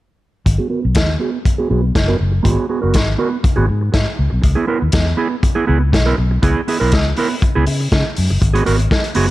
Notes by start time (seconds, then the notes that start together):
0.46 G#1, muted clean electric guitar stroke, kick, closed hi-hat
0.58 B3 F#4 G#4
0.70 B3 F#4 A#4
0.82 B1, muted clean electric guitar stroke
0.95 kick, snare, closed hi-hat
1.08 muted clean electric guitar stroke
1.19 B3 F#4 G#4
1.33 muted clean electric guitar stroke
1.45 muted clean electric guitar stroke, kick, closed hi-hat
1.58 B3 F#4 G#4
1.70 B1 B3 F#4 G#4
1.83 muted clean electric guitar stroke
1.95 F#1, muted clean electric guitar stroke, kick, snare, closed hi-hat
2.08 B3 F#4 A#4
2.19 F#1, muted clean electric guitar stroke
2.32 muted clean electric guitar stroke
2.43 G#1 B3 F#4 G#4, kick, closed hi-hat
2.69 B3 F#4 G#4
2.82 F#1 B3 F#4 A#4
2.94 G#1, kick, snare, closed hi-hat
3.06 muted clean electric guitar stroke
3.18 B3 F#4 A#4
3.31 muted clean electric guitar stroke
3.43 muted clean electric guitar stroke, kick, closed hi-hat
3.56 G#1 B3 F#4 G#4
3.68 G#2, muted clean electric guitar stroke
3.81 muted clean electric guitar stroke
3.92 G#2, muted clean electric guitar stroke, kick, snare, closed hi-hat
4.05 muted clean electric guitar stroke
4.19 C#2
4.30 B1, muted clean electric guitar stroke
4.42 C#2, muted clean electric guitar stroke, kick, closed hi-hat
4.55 B3 E4 G#4
4.67 B3 E4 A#4
4.81 D#2, muted clean electric guitar stroke
4.92 E2, kick, snare, closed hi-hat
5.06 muted clean electric guitar stroke
5.17 B3 E4 G#4
5.30 muted clean electric guitar stroke
5.43 muted clean electric guitar stroke, kick, closed hi-hat
5.55 B3 E4 G#4
5.67 C#2 B3 E4 G#4
5.80 muted clean electric guitar stroke
5.92 B1, muted clean electric guitar stroke, kick, snare, closed hi-hat
6.06 B3 E4 A#4
6.17 B1, muted clean electric guitar stroke
6.31 muted clean electric guitar stroke
6.42 C#2 B3 E4 G#4, kick, closed hi-hat
6.68 B3 E4 G#4, open hi-hat
6.80 B1 B3 E4 A#4
6.92 C#2, kick, snare, closed hi-hat
7.06 muted clean electric guitar stroke
7.17 B3 E4 A#4, open hi-hat
7.31 muted clean electric guitar stroke
7.42 muted clean electric guitar stroke, kick, closed hi-hat
7.55 C#2 B3 E4 G#4
7.66 C#3, muted clean electric guitar stroke, open hi-hat
7.80 muted clean electric guitar stroke
7.92 C#3, muted clean electric guitar stroke, kick, snare, closed hi-hat
8.06 muted clean electric guitar stroke
8.17 F#2, open hi-hat
8.30 F#1, muted clean electric guitar stroke
8.41 G#1, muted clean electric guitar stroke, kick, closed hi-hat
8.54 B3 F#4 G#4, closed hi-hat
8.65 G#1 B3 F#4 A#4, open hi-hat
8.79 muted clean electric guitar stroke, closed hi-hat
8.91 kick, snare
9.04 muted clean electric guitar stroke, closed hi-hat
9.15 F#1 B3 F#4 G#4, open hi-hat